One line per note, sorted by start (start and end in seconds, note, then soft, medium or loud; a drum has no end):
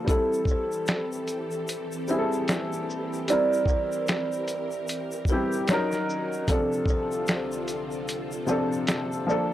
0.05 5.64 E3 medium
0.05 1.09 G3 medium
0.05 1.09 C4 medium
0.05 5.64 C4 medium
0.05 1.10 E4 medium
0.05 5.64 G4 medium
0.05 3.24 A4 medium
0.05 kick loud
0.05 closed hi-hat medium
0.09 1.11 A4 medium
0.09 0.45 A4 medium
0.09 shaker medium
0.33 shaker soft
0.45 kick medium
0.45 shaker soft
0.51 2.05 C5 medium
0.72 shaker soft
0.87 finger snap medium
0.87 snare loud
0.87 closed hi-hat medium
0.87 shaker medium
1.12 shaker soft
1.28 closed hi-hat soft
1.28 shaker soft
1.51 shaker soft
1.68 closed hi-hat medium
1.68 shaker medium
1.92 shaker medium
2.08 2.83 G3 medium
2.08 2.84 C4 medium
2.08 2.85 E4 medium
2.08 3.25 E5 medium
2.08 shaker soft
2.08 shaker medium
2.12 2.18 G#4 medium
2.19 2.89 A4 medium
2.32 shaker soft
2.48 finger snap medium
2.48 snare loud
2.48 closed hi-hat medium
2.48 shaker medium
2.73 shaker soft
2.90 shaker soft
3.13 shaker soft
3.28 4.30 G3 medium
3.28 4.31 C4 medium
3.28 4.32 E4 medium
3.28 6.45 A#4 loud
3.28 3.65 D5 loud
3.28 closed hi-hat medium
3.28 shaker medium
3.32 4.32 A#4 medium
3.53 shaker medium
3.66 4.85 C5 medium
3.66 kick medium
3.66 shaker soft
3.92 shaker medium
4.07 finger snap medium
4.07 snare loud
4.07 closed hi-hat medium
4.07 shaker medium
4.32 shaker soft
4.48 closed hi-hat soft
4.48 shaker soft
4.48 shaker medium
4.71 shaker soft
4.88 closed hi-hat medium
4.88 shaker medium
5.12 shaker medium
5.25 5.68 G3 medium
5.25 kick medium
5.25 shaker soft
5.30 5.69 C4 medium
5.30 5.70 E4 medium
5.30 5.70 G4 medium
5.30 5.51 A#4 medium
5.52 shaker medium
5.68 6.47 D#3 medium
5.68 6.36 F#3 medium
5.68 6.47 C#4 medium
5.68 6.36 C#4 medium
5.68 6.47 F#4 medium
5.68 finger snap medium
5.68 snare loud
5.68 closed hi-hat medium
5.68 shaker medium
5.72 6.37 D#4 medium
5.72 6.38 A#4 loud
5.92 snare soft
5.92 shaker soft
6.10 shaker soft
6.33 shaker soft
6.47 9.25 C2 medium
6.47 7.50 C3 medium
6.47 9.25 D3 medium
6.47 7.51 F3 medium
6.47 9.25 C4 medium
6.47 7.51 C4 medium
6.47 7.52 D4 medium
6.47 9.25 F4 medium
6.47 9.54 A4 medium
6.47 6.85 A4 medium
6.47 kick loud
6.47 closed hi-hat medium
6.47 shaker medium
6.52 7.52 A4 medium
6.72 shaker soft
6.86 kick medium
6.86 shaker soft
6.90 8.45 C5 medium
7.12 shaker soft
7.27 finger snap medium
7.27 snare loud
7.27 closed hi-hat medium
7.27 shaker medium
7.52 shaker soft
7.68 closed hi-hat soft
7.68 shaker medium
7.91 shaker soft
8.08 closed hi-hat medium
8.08 shaker medium
8.32 shaker medium
8.46 9.22 C3 medium
8.46 9.23 F3 medium
8.46 9.23 C4 medium
8.46 9.24 D4 medium
8.46 9.54 F5 medium
8.46 shaker soft
8.51 9.25 A4 medium
8.72 shaker medium
8.87 finger snap medium
8.87 snare loud
8.87 closed hi-hat medium
8.87 shaker medium
9.12 shaker soft
9.27 9.54 D3 medium
9.27 9.54 F3 medium
9.27 9.54 A#3 medium
9.27 9.54 D4 medium
9.27 9.54 F4 medium
9.27 shaker soft
9.31 9.54 A4 loud